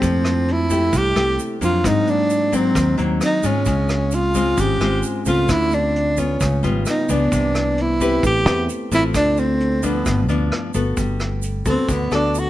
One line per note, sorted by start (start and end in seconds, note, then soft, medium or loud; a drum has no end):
0.00 0.89 F2 medium
0.00 0.91 F3 medium
0.00 0.48 A3 medium
0.00 0.67 A3 medium
0.00 0.54 C4 medium
0.00 0.67 E4 medium
0.00 0.67 G4 medium
0.00 kick medium
0.00 closed hi-hat medium
0.00 shaker medium
0.24 cross-stick medium
0.24 closed hi-hat soft
0.24 shaker soft
0.48 0.94 C4 medium
0.48 closed hi-hat soft
0.52 0.98 E4 medium
0.70 1.12 A3 medium
0.70 1.12 E4 medium
0.70 1.13 G4 medium
0.70 kick soft
0.70 closed hi-hat soft
0.70 shaker medium
0.93 1.14 C2 loud
0.93 1.82 C3 medium
0.93 1.40 E4 medium
0.93 kick medium
0.93 closed hi-hat medium
0.93 shaker medium
0.97 1.41 G4 medium
1.15 1.37 C2 medium
1.15 1.58 A3 medium
1.15 1.58 E4 medium
1.15 1.58 G4 medium
1.15 cross-stick medium
1.15 closed hi-hat soft
1.15 shaker soft
1.39 closed hi-hat soft
1.39 shaker medium
1.61 1.83 F2 medium
1.61 2.49 F#3 medium
1.61 2.49 A#3 medium
1.61 2.49 C4 medium
1.61 1.83 D4 medium
1.61 1.88 F4 medium
1.61 kick soft
1.61 closed hi-hat soft
1.61 shaker medium
1.84 2.73 G#2 medium
1.84 2.72 G#2 medium
1.84 2.07 C4 medium
1.84 2.11 D#4 medium
1.84 kick medium
1.84 cross-stick medium
1.84 closed hi-hat medium
1.84 shaker medium
2.07 2.53 A#3 medium
2.07 2.57 D4 medium
2.07 closed hi-hat soft
2.07 shaker soft
2.30 closed hi-hat soft
2.30 shaker soft
2.52 2.94 F#3 medium
2.52 2.99 G#3 medium
2.52 2.95 A#3 medium
2.52 2.95 C4 medium
2.52 3.00 C4 medium
2.52 kick soft
2.52 closed hi-hat soft
2.52 shaker medium
2.75 2.97 D#2 loud
2.75 3.64 D#3 soft
2.75 kick medium
2.75 cross-stick medium
2.75 closed hi-hat medium
2.75 shaker medium
2.98 3.20 D#2 medium
2.98 3.40 F#3 medium
2.98 3.40 A#3 medium
2.98 3.40 C4 medium
2.98 closed hi-hat soft
2.98 shaker soft
3.21 3.43 C4 medium
3.21 3.48 D#4 medium
3.21 cross-stick medium
3.21 closed hi-hat soft
3.21 shaker medium
3.43 3.65 G#2 medium
3.43 4.31 G#3 medium
3.43 4.13 G#3 medium
3.43 4.16 C#4 medium
3.43 4.32 F4 medium
3.43 kick soft
3.43 closed hi-hat soft
3.43 shaker medium
3.65 4.54 C#2 medium
3.65 4.55 C#3 medium
3.65 kick medium
3.65 closed hi-hat medium
3.65 shaker medium
3.89 cross-stick medium
3.89 closed hi-hat soft
3.89 shaker soft
4.11 4.57 C#4 medium
4.11 4.62 F4 medium
4.11 closed hi-hat soft
4.11 shaker medium
4.34 4.77 G#3 medium
4.34 4.77 C4 medium
4.34 4.77 F4 medium
4.34 kick soft
4.34 closed hi-hat soft
4.34 shaker medium
4.57 4.79 G#1 medium
4.57 5.47 G#2 medium
4.57 5.04 C#4 medium
4.57 5.05 G4 medium
4.57 kick medium
4.57 closed hi-hat soft
4.57 shaker medium
4.81 5.02 G#1 medium
4.81 5.23 G#3 medium
4.81 5.23 C4 medium
4.81 5.23 F4 medium
4.81 cross-stick medium
4.81 closed hi-hat soft
4.81 shaker soft
5.03 closed hi-hat soft
5.03 shaker medium
5.25 5.47 C#2 medium
5.25 6.14 A3 medium
5.25 6.14 C4 medium
5.25 5.47 C#4 medium
5.25 6.14 F4 medium
5.25 5.52 F4 medium
5.25 kick soft
5.25 closed hi-hat soft
5.25 shaker medium
5.48 6.36 D2 medium
5.48 6.38 D3 medium
5.48 5.72 C4 medium
5.48 5.76 E4 medium
5.48 kick medium
5.48 cross-stick medium
5.48 closed hi-hat medium
5.48 shaker medium
5.71 6.17 A3 medium
5.71 6.21 D4 medium
5.71 closed hi-hat soft
5.71 shaker soft
5.96 closed hi-hat soft
6.17 6.63 G#3 medium
6.17 6.60 B3 medium
6.17 6.64 C#4 medium
6.17 6.60 F4 medium
6.17 kick soft
6.17 closed hi-hat soft
6.17 shaker medium
6.40 6.65 C#2 loud
6.40 7.30 C#3 medium
6.40 kick medium
6.40 cross-stick medium
6.40 closed hi-hat medium
6.40 shaker medium
6.63 6.85 G#1 medium
6.63 7.05 G3 medium
6.63 7.05 B3 medium
6.63 7.06 F4 medium
6.63 closed hi-hat soft
6.63 shaker soft
6.85 7.08 B3 medium
6.85 cross-stick medium
6.85 closed hi-hat soft
6.85 shaker medium
6.90 7.13 D#4 medium
7.09 7.30 C#2 medium
7.09 7.97 E3 medium
7.09 7.97 B3 medium
7.09 7.78 B3 medium
7.09 7.97 D4 medium
7.09 7.83 D4 medium
7.09 kick soft
7.09 closed hi-hat soft
7.09 shaker medium
7.32 8.19 C2 medium
7.32 8.21 C3 medium
7.32 kick medium
7.32 closed hi-hat medium
7.32 shaker medium
7.55 cross-stick medium
7.55 closed hi-hat soft
7.55 shaker soft
7.78 8.24 C4 medium
7.78 closed hi-hat soft
7.82 8.25 E4 medium
8.00 8.42 C4 medium
8.00 8.43 G4 medium
8.00 8.43 B4 medium
8.00 kick soft
8.00 closed hi-hat soft
8.00 shaker medium
8.23 8.46 A1 loud
8.23 8.90 A3 medium
8.23 8.66 E4 medium
8.23 8.67 G4 medium
8.23 kick medium
8.23 closed hi-hat medium
8.23 shaker medium
8.46 8.67 E2 medium
8.46 8.88 C4 medium
8.46 8.88 G4 medium
8.46 8.88 B4 medium
8.46 cross-stick medium
8.46 closed hi-hat soft
8.46 shaker soft
8.69 closed hi-hat soft
8.69 shaker medium
8.92 9.13 A1 medium
8.92 9.79 A3 medium
8.92 9.02 C4 medium
8.92 9.79 C4 medium
8.92 9.04 E4 medium
8.92 9.80 F4 medium
8.92 kick soft
8.92 closed hi-hat soft
8.92 shaker medium
9.14 10.02 D2 medium
9.14 10.04 D3 medium
9.14 9.36 A3 medium
9.14 9.41 D4 medium
9.14 kick medium
9.14 cross-stick medium
9.14 closed hi-hat medium
9.14 shaker medium
9.37 9.83 A3 medium
9.37 9.87 C4 medium
9.37 closed hi-hat soft
9.37 shaker soft
9.60 closed hi-hat soft
9.83 10.25 F3 medium
9.83 10.29 G3 medium
9.83 10.25 B3 medium
9.83 10.30 B3 medium
9.83 10.25 D4 medium
9.83 kick soft
9.83 closed hi-hat soft
9.83 shaker medium
10.06 10.29 G1 loud
10.06 10.95 G2 medium
10.06 kick medium
10.06 cross-stick medium
10.06 closed hi-hat medium
10.06 shaker medium
10.29 10.50 D2 medium
10.29 10.71 F3 medium
10.29 10.71 B3 medium
10.29 10.71 D4 medium
10.29 closed hi-hat soft
10.29 shaker soft
10.52 cross-stick medium
10.52 closed hi-hat soft
10.74 10.96 G1 medium
10.74 11.41 B3 medium
10.74 11.41 F#4 medium
10.74 11.41 A4 medium
10.74 kick soft
10.74 closed hi-hat soft
10.74 shaker medium
10.97 11.62 G1 medium
10.97 11.86 G3 medium
10.97 kick medium
10.97 closed hi-hat soft
10.97 shaker soft
11.20 cross-stick medium
11.20 closed hi-hat soft
11.20 shaker soft
11.42 closed hi-hat soft
11.42 shaker medium
11.66 11.76 D2 medium
11.66 12.08 B3 medium
11.66 11.94 C4 medium
11.66 12.08 F#4 soft
11.66 12.08 A4 medium
11.66 kick medium
11.66 closed hi-hat soft
11.66 shaker medium
11.89 12.10 D2 medium
11.89 12.50 D3 medium
11.89 kick medium
11.89 closed hi-hat soft
11.89 shaker medium
11.93 12.13 B3 medium
12.11 12.50 D2 medium
12.11 12.50 B3 medium
12.11 12.41 D4 medium
12.11 12.50 F#4 medium
12.11 12.50 A4 medium
12.11 cross-stick medium
12.11 closed hi-hat soft
12.11 shaker soft
12.35 closed hi-hat soft
12.35 shaker medium
12.39 12.50 F#4 medium